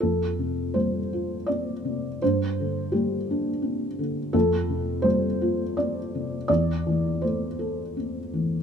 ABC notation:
X:1
M:3/4
L:1/8
Q:1/4=83
K:F
V:1 name="Felt piano"
A2 c2 d2 | c2 G3 z | A2 c2 d2 | d2 c2 z2 |]
V:2 name="Felt piano" clef=bass
F,, C, G, F C C, | G,, D, G, D C D, | F,, C, G, F C C, | E,, E, A, A C E, |]